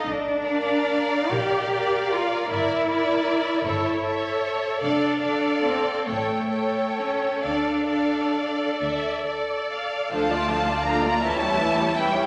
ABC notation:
X:1
M:6/8
L:1/16
Q:3/8=49
K:Dm
V:1 name="Violin section"
z2 f6 f4 | e2 e4 e2 e4 | f2 f4 g2 g4 | f2 f4 e2 d2 f2 |
a4 b2 a4 g2 |]
V:2 name="Violin section"
z2 d6 d4 | d2 d4 ^c2 c4 | d2 d4 ^c2 c4 | d2 d6 d4 |
[Af] [Fd] [Af] [Fd] [Af] [Fd] [Ee] [G^c] [Ee] [Gc] [Ee] [Gc] |]
V:3 name="Viola section"
z2 B6 B4 | B2 B4 A2 A4 | A2 A4 A2 A4 | A2 A6 A4 |
[F,D] [A,F] [F,D] [A,F] [F,D] [A,F] [E,^C] [G,E] [E,C] [G,E] [E,C] [G,E] |]
V:4 name="Cello section"
D6 G4 F2 | E8 z4 | D4 C2 A,4 ^C2 | D6 z6 |
A,4 B,2 A,4 G,2 |]
V:5 name="Double bass section" clef=bass
B,,,6 B,,,6 | G,,,6 G,,,6 | F,,,6 A,,,6 | D,,6 D,,6 |
D,,6 E,,6 |]